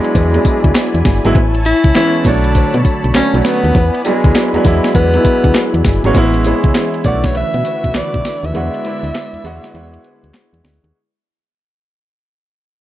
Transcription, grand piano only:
0.00 0.35 F#3 loud
0.00 0.35 G#3 medium
0.00 0.36 B3 medium
0.00 0.36 D4 loud
0.35 0.98 F#3 medium
0.35 0.98 G#3 medium
0.35 0.98 B3 medium
0.35 0.99 D4 medium
1.25 1.35 F#3 loud
1.25 1.35 G#3 medium
1.25 1.36 B3 medium
1.25 1.36 E4 loud
1.96 2.25 E3 medium
1.96 2.25 G#3 medium
1.96 2.26 B3 medium
1.96 2.26 C#4 medium
2.26 3.01 F#3 medium
2.26 3.01 A3 medium
2.26 3.01 D4 medium
2.26 3.01 C#5 medium
3.16 3.29 F#3 medium
3.16 3.29 A3 medium
3.16 3.30 C#4 medium
3.16 3.30 D4 medium
3.35 3.75 F#3 medium
3.35 3.76 A3 medium
3.35 3.76 C#4 medium
3.35 3.76 D4 medium
4.06 4.38 F#3 medium
4.06 4.39 G#3 medium
4.06 4.39 B3 medium
4.06 4.39 D4 medium
4.55 4.62 F#3 medium
4.55 4.62 G#3 medium
4.55 4.63 B3 medium
4.55 4.63 D4 loud
4.66 4.98 F#3 medium
4.66 4.98 G#3 medium
4.66 4.99 B3 medium
4.66 4.99 E4 medium
5.15 5.78 F#3 medium
5.15 5.78 G#3 medium
5.15 5.78 B3 medium
5.15 5.78 E4 medium
6.05 6.15 F#3 medium
6.05 6.15 G#3 medium
6.05 6.15 B3 medium
6.05 6.15 C#4 loud
6.16 6.39 G#3 loud
6.16 6.40 B3 medium
6.16 6.40 C#4 medium
6.16 6.40 E4 loud
6.46 6.92 G#3 medium
6.46 6.92 B3 medium
6.46 6.93 C#4 medium
6.46 6.93 E4 loud
7.06 8.03 A3 medium
7.06 8.04 C#4 medium
7.06 8.04 D4 medium
7.06 8.04 F#4 medium
8.55 8.79 G#3 medium
8.55 8.79 B3 medium
8.55 8.79 D4 medium
8.55 8.80 F#4 medium
8.85 9.32 G#3 medium
8.85 9.32 B3 medium
8.85 9.32 D4 medium
8.85 9.33 E4 medium
9.45 9.69 G#3 loud
9.45 9.69 B3 medium
9.45 9.69 D4 medium
9.45 9.70 F#4 loud
9.74 10.62 G#3 medium
9.74 10.62 B3 medium
9.74 10.62 D4 medium
9.74 10.63 F#4 loud

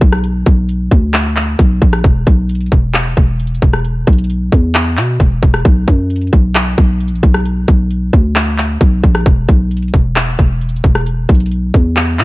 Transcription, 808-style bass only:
0.01 0.45 B1 loud
0.46 0.90 B1 loud
0.91 1.56 D2 loud
1.59 1.81 B1 loud
1.82 2.03 A#1 loud
2.04 2.26 E1 loud
2.27 2.70 B1 loud
2.72 3.15 E1 loud
3.17 3.60 E1 loud
3.62 4.05 E1 loud
4.07 4.51 B1 loud
4.52 4.99 E2 loud
4.97 5.19 B2 loud
5.20 5.42 E1 loud
5.43 5.64 E1 loud
5.65 5.87 B1 loud
5.88 6.31 F#2 loud
6.33 6.76 B1 loud
6.78 7.13 B1 loud
7.12 7.22 A#1 loud
7.23 7.66 B1 loud
7.68 8.11 B1 loud
8.13 8.78 D2 loud
8.81 9.03 B1 loud
9.04 9.25 A#1 loud
9.26 9.48 E1 loud
9.49 9.92 B1 loud
9.94 10.37 E1 loud
10.39 10.82 E1 loud
10.84 11.27 E1 loud
11.29 11.72 B1 loud
11.74 12.21 E2 loud
12.19 12.24 B2 loud

